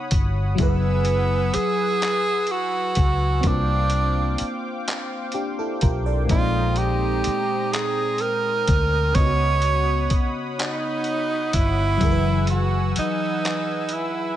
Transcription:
Already playing: C#3 B3 D#4 F#4 C#5 F#5 B5 D#6
0.11 G1, kick, closed hi-hat
0.55 F#3 E4 B4 G#5 E6, kick, closed hi-hat
0.59 F#1 B3 G#4 B4
1.05 closed hi-hat
1.54 G#4, muted fingered electric bass stroke, closed hi-hat
2.02 clap, closed hi-hat
2.47 closed hi-hat
2.52 F#4
2.95 C#2, kick, closed hi-hat
3.41 A#3 C4 C5 F5 G5 D6, kick, closed hi-hat
3.45 C2 D4 F4
3.90 closed hi-hat
4.38 muted fingered electric bass stroke, closed hi-hat
4.88 clap, closed hi-hat
5.32 D4 G4, closed hi-hat
5.59 E4 A4
5.81 B1 F4 A#4, kick, closed hi-hat
6.06 A4 D5
6.26 A#2 G#3, kick, closed hi-hat
6.30 A#1 C4 D#4 F4 A#5 D#6
6.76 G4, closed hi-hat
7.24 muted fingered electric bass stroke, closed hi-hat
7.73 G#4, clap, closed hi-hat
8.18 A#4, closed hi-hat
8.68 D2, kick, closed hi-hat
9.12 C#2 C#3 B3 C#5 F#5 B5, kick, closed hi-hat
9.18 F4 D#5
9.26 F#4
9.62 closed hi-hat
10.10 muted fingered electric bass stroke, kick, closed hi-hat
10.59 D#4, clap, closed hi-hat
11.04 closed hi-hat
11.53 G1 E4, kick, closed hi-hat
11.97 E3 F#3 B4 G#5 E6, kick, closed hi-hat
12.02 F#1 G#4 A#4
12.11 B4
12.47 F#4, closed hi-hat
12.96 D#4, muted fingered electric bass stroke, closed hi-hat
13.45 clap, closed hi-hat
13.89 closed hi-hat
13.93 E4

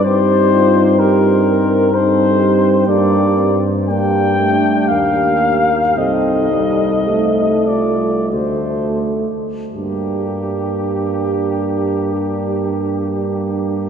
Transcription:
Already playing: G2
0.04 C4 D#4 G4 C5
0.53 F4
0.99 G4 A#4
1.48 A#4
1.93 C4 D#4 A4 C5
2.40 G4
2.87 G2 A#3 D4 D5
3.38 C4
3.89 A#3 D4 G4 G5
4.39 A3
4.88 D#2 A#3 F5
5.95 C2 C4 D#4 A4 D#5
6.51 G3
7.08 A3 D#4
7.67 F4 D5
8.32 D2 A3 F#4 A4 C5
9.73 G2 A#3 D4 G4

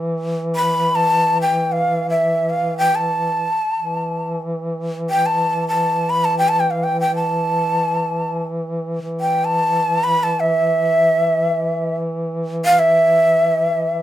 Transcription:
Already playing: E3
0.56 B5
0.95 A5
1.42 G5
1.72 F5
2.10 E5
2.50 F5
2.78 G5
2.95 A5
3.78 E3
5.10 G5
5.26 A5
5.68 A5
6.10 B5
6.25 A5
6.38 G5
6.49 A5
6.60 G5
6.71 F5
6.84 G5
7.01 G5
7.16 A5
9.01 E3
9.21 G5
9.45 A5
10.04 B5
10.23 A5
10.40 E5
12.65 F5
12.79 E5

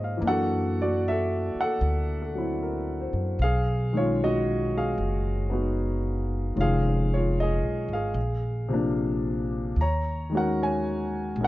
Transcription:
Already playing: G#2 D#3 G#3 A#3 C#4 D#4 F4 G#4 A#4 C5 C#5 D#5 F5
0.04 F5
0.17 E3 A#3
0.22 F#2 D4
0.27 F#4 A4 F#5
0.82 F#4 D5
1.08 A4 E5
1.55 muted upright bass stroke
1.61 A4 F#5
1.81 D2
2.22 A4
2.35 F#3 C4 E4
2.63 A#4
3.01 C5
3.13 F#2
3.39 B1 F5
3.44 G#4
3.93 D#3 G#3 C#4
3.97 F4 C#5 F5
4.24 F#4 D#5
4.77 G#4 F5
4.98 F#1
5.50 B3 D#4 F#4
6.56 F1 D#3 G#3 C#4 F4
6.61 G#4 F5
7.14 F4 C#5
7.40 G#4 D#5
7.62 B1
7.88 G#1
7.93 G#4 F5
8.14 A#1
8.69 C3 F3 A#3
8.74 D4
9.76 D#2
9.81 C#5 A#5
10.30 D#3 G#3
10.34 C#4 F#4 A#4 F#5
10.62 C#5 G#5
11.36 A#1 G#3 C4
11.40 D#4 A#4 F#5

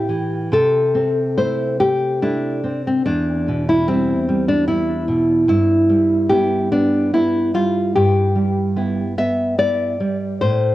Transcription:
Already playing: A2 G4
0.09 E3
0.52 C3 A4
0.95 C4
1.38 A3 E4 C5
1.80 A3 G4
2.22 A3 D4 E4
2.64 C4
2.87 C4
3.06 E2 D4
3.48 B2
3.69 E4
3.88 G3 C4 E4
4.29 G3
4.48 D4
4.68 G3 E4
5.08 B2
5.48 G2 E4
5.89 G3
6.29 B3 E4 G4
6.72 B3 D4
7.13 B3 E4
7.54 G3 F4
7.96 G2 G4
8.36 G3
8.76 B3 E4
9.18 B3 E5
9.58 B3 E4 D5
10.00 G3
10.41 A2 C5

